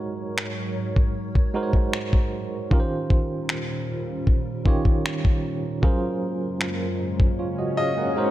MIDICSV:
0, 0, Header, 1, 6, 480
1, 0, Start_track
1, 0, Tempo, 779221
1, 1671, Time_signature, 4, 2, 24, 8
1, 5117, End_track
2, 0, Start_track
2, 0, Title_t, "Grand piano"
2, 0, Program_c, 0, 0
2, 4789, Note_on_c, 0, 75, 83
2, 5117, Note_off_c, 0, 75, 0
2, 5117, End_track
3, 0, Start_track
3, 0, Title_t, "Tine electric piano"
3, 0, Program_c, 1, 4
3, 0, Control_c, 1, 64, 127
3, 0, Note_on_c, 1, 56, 70
3, 0, Note_on_c, 1, 63, 66
3, 0, Note_on_c, 1, 66, 65
3, 0, Note_on_c, 1, 70, 68
3, 0, Note_on_c, 1, 73, 84
3, 449, Note_off_c, 1, 56, 0
3, 451, Note_off_c, 1, 63, 0
3, 453, Note_off_c, 1, 66, 0
3, 456, Note_off_c, 1, 70, 0
3, 478, Note_off_c, 1, 73, 0
3, 948, Note_on_c, 1, 56, 79
3, 951, Note_on_c, 1, 63, 75
3, 955, Note_on_c, 1, 66, 72
3, 960, Note_on_c, 1, 70, 77
3, 964, Note_on_c, 1, 72, 72
3, 997, Note_off_c, 1, 72, 0
3, 1003, Note_on_c, 1, 73, 88
3, 1476, Note_off_c, 1, 56, 0
3, 1477, Note_off_c, 1, 63, 0
3, 1479, Note_off_c, 1, 66, 0
3, 1482, Note_off_c, 1, 70, 0
3, 1503, Note_off_c, 1, 73, 0
3, 1666, Note_on_c, 1, 51, 71
3, 1670, Note_on_c, 1, 61, 66
3, 1674, Note_on_c, 1, 65, 70
3, 1678, Control_c, 1, 64, 0
3, 1678, Note_on_c, 1, 67, 69
3, 1683, Note_on_c, 1, 70, 64
3, 1717, Note_off_c, 1, 70, 0
3, 1723, Note_on_c, 1, 72, 83
3, 1799, Control_c, 1, 64, 127
3, 2370, Note_off_c, 1, 51, 0
3, 2372, Note_off_c, 1, 61, 0
3, 2374, Note_off_c, 1, 65, 0
3, 2376, Note_off_c, 1, 67, 0
3, 2399, Note_off_c, 1, 72, 0
3, 2864, Note_on_c, 1, 51, 81
3, 2869, Note_on_c, 1, 61, 68
3, 2873, Note_on_c, 1, 65, 73
3, 2878, Note_on_c, 1, 67, 72
3, 2881, Note_on_c, 1, 73, 91
3, 3394, Note_off_c, 1, 51, 0
3, 3396, Note_off_c, 1, 61, 0
3, 3398, Note_off_c, 1, 65, 0
3, 3401, Note_off_c, 1, 67, 0
3, 3402, Note_off_c, 1, 73, 0
3, 3586, Note_on_c, 1, 54, 74
3, 3589, Note_on_c, 1, 61, 64
3, 3594, Note_on_c, 1, 65, 67
3, 3596, Note_on_c, 1, 68, 70
3, 3599, Control_c, 1, 64, 0
3, 3600, Note_on_c, 1, 70, 71
3, 3604, Note_on_c, 1, 72, 81
3, 3697, Control_c, 1, 64, 127
3, 4290, Note_off_c, 1, 54, 0
3, 4292, Note_off_c, 1, 61, 0
3, 4294, Note_off_c, 1, 65, 0
3, 4295, Note_off_c, 1, 68, 0
3, 4297, Note_off_c, 1, 70, 0
3, 4299, Note_off_c, 1, 72, 0
3, 4552, Note_on_c, 1, 73, 61
3, 4555, Note_on_c, 1, 65, 54
3, 4666, Note_off_c, 1, 73, 0
3, 4667, Note_off_c, 1, 65, 0
3, 4672, Note_on_c, 1, 75, 61
3, 4676, Note_on_c, 1, 66, 54
3, 4785, Note_off_c, 1, 75, 0
3, 4787, Note_off_c, 1, 66, 0
3, 4793, Note_on_c, 1, 77, 62
3, 4798, Note_on_c, 1, 68, 58
3, 4906, Note_off_c, 1, 77, 0
3, 4908, Note_off_c, 1, 68, 0
3, 4915, Note_on_c, 1, 78, 58
3, 4918, Note_on_c, 1, 70, 50
3, 5024, Note_on_c, 1, 56, 81
3, 5029, Note_off_c, 1, 70, 0
3, 5029, Note_on_c, 1, 63, 76
3, 5032, Note_on_c, 1, 66, 74
3, 5037, Note_on_c, 1, 70, 75
3, 5039, Control_c, 1, 64, 0
3, 5042, Note_on_c, 1, 72, 87
3, 5117, Note_off_c, 1, 56, 0
3, 5117, Note_off_c, 1, 63, 0
3, 5117, Note_off_c, 1, 66, 0
3, 5117, Note_off_c, 1, 70, 0
3, 5117, Note_off_c, 1, 72, 0
3, 5117, Note_off_c, 1, 78, 0
3, 5117, End_track
4, 0, Start_track
4, 0, Title_t, "Analog synth pad"
4, 0, Program_c, 2, 89
4, 0, Note_on_c, 2, 44, 69
4, 0, Note_on_c, 2, 54, 64
4, 0, Note_on_c, 2, 70, 64
4, 0, Note_on_c, 2, 73, 80
4, 1651, Note_off_c, 2, 44, 0
4, 1651, Note_off_c, 2, 54, 0
4, 1651, Note_off_c, 2, 70, 0
4, 1651, Note_off_c, 2, 73, 0
4, 1668, Note_on_c, 2, 65, 64
4, 1669, Note_on_c, 2, 39, 68
4, 1669, Note_on_c, 2, 55, 65
4, 1669, Note_on_c, 2, 61, 64
4, 1669, Note_on_c, 2, 70, 75
4, 1670, Note_on_c, 2, 46, 64
4, 3570, Note_off_c, 2, 55, 0
4, 3571, Note_off_c, 2, 39, 0
4, 3571, Note_off_c, 2, 46, 0
4, 3571, Note_off_c, 2, 61, 0
4, 3591, Note_on_c, 2, 42, 67
4, 3592, Note_on_c, 2, 49, 65
4, 3592, Note_on_c, 2, 56, 62
4, 3593, Note_on_c, 2, 58, 67
4, 5005, Note_off_c, 2, 65, 0
4, 5016, Note_off_c, 2, 42, 0
4, 5017, Note_off_c, 2, 49, 0
4, 5017, Note_off_c, 2, 58, 0
4, 5029, Note_on_c, 2, 44, 72
4, 5030, Note_on_c, 2, 66, 70
4, 5117, Note_off_c, 2, 44, 0
4, 5117, Note_off_c, 2, 56, 0
4, 5117, Note_off_c, 2, 66, 0
4, 5117, Note_off_c, 2, 70, 0
4, 5117, End_track
5, 0, Start_track
5, 0, Title_t, "Swell"
5, 0, Program_c, 3, 103
5, 1669, Note_on_c, 3, 60, 80
5, 5117, Note_off_c, 3, 60, 0
5, 5117, End_track
6, 0, Start_track
6, 0, Title_t, "Drums"
6, 232, Note_on_c, 9, 26, 107
6, 293, Note_off_c, 9, 26, 0
6, 594, Note_on_c, 9, 36, 85
6, 655, Note_off_c, 9, 36, 0
6, 834, Note_on_c, 9, 36, 86
6, 895, Note_off_c, 9, 36, 0
6, 1068, Note_on_c, 9, 36, 78
6, 1129, Note_off_c, 9, 36, 0
6, 1191, Note_on_c, 9, 26, 97
6, 1253, Note_off_c, 9, 26, 0
6, 1312, Note_on_c, 9, 36, 81
6, 1373, Note_off_c, 9, 36, 0
6, 1671, Note_on_c, 9, 36, 114
6, 1733, Note_off_c, 9, 36, 0
6, 1912, Note_on_c, 9, 36, 81
6, 1973, Note_off_c, 9, 36, 0
6, 2151, Note_on_c, 9, 26, 108
6, 2212, Note_off_c, 9, 26, 0
6, 2631, Note_on_c, 9, 36, 84
6, 2692, Note_off_c, 9, 36, 0
6, 2868, Note_on_c, 9, 36, 82
6, 2929, Note_off_c, 9, 36, 0
6, 2989, Note_on_c, 9, 36, 80
6, 3050, Note_off_c, 9, 36, 0
6, 3115, Note_on_c, 9, 26, 105
6, 3176, Note_off_c, 9, 26, 0
6, 3233, Note_on_c, 9, 36, 84
6, 3295, Note_off_c, 9, 36, 0
6, 3591, Note_on_c, 9, 36, 111
6, 3652, Note_off_c, 9, 36, 0
6, 4070, Note_on_c, 9, 26, 99
6, 4131, Note_off_c, 9, 26, 0
6, 4433, Note_on_c, 9, 36, 83
6, 4495, Note_off_c, 9, 36, 0
6, 5117, End_track
0, 0, End_of_file